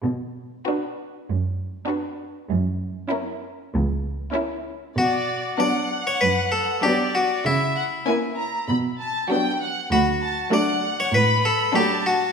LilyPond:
<<
  \new Staff \with { instrumentName = "Violin section" } { \time 4/4 \key b \minor \tempo 4 = 97 r4 b'4 r4 b'4 | r4 ais'4 r4 ais'4 | d''4 fis''2 d''4 | e''8 fis''8 gis''8 ais''8 b''8 a''8 g''8 fis''8 |
b''8 a''8 fis''4 b''4 a''4 | }
  \new Staff \with { instrumentName = "Harpsichord" } { \time 4/4 \key b \minor r1 | r1 | fis'4 d''8. cis''16 b'8 a'8 g'8 fis'8 | e'2.~ e'8 r8 |
fis'4 d''8. cis''16 b'8 a'8 g'8 fis'8 | }
  \new Staff \with { instrumentName = "Violin section" } { \time 4/4 \key b \minor r4 fis'4 r4 fis'4 | r4 e'4 r4 e'4 | r4 d'4 r4 d'4 | r4 <cis' e'>4 r4 <d' fis'>4 |
r4 <d' fis'>4 r4 <d' fis'>4 | }
  \new Staff \with { instrumentName = "Viola section" } { \time 4/4 \key b \minor r4 d'4 r4 d'4 | r4 cis'4 r4 cis'4 | r4 <fis b>4 r4 <fis b>4 | r4 ais4 r4 <fis b>4 |
r4 <fis a>4 r4 <fis a>4 | }
  \new Staff \with { instrumentName = "Cello section" } { \clef bass \time 4/4 \key b \minor b,4 r4 fis,4 r4 | fis,4 r4 cis,4 r4 | b,4 r4 fis,4 r4 | cis4 r4 b,4 r4 |
d,4 r4 a,4 r4 | }
>>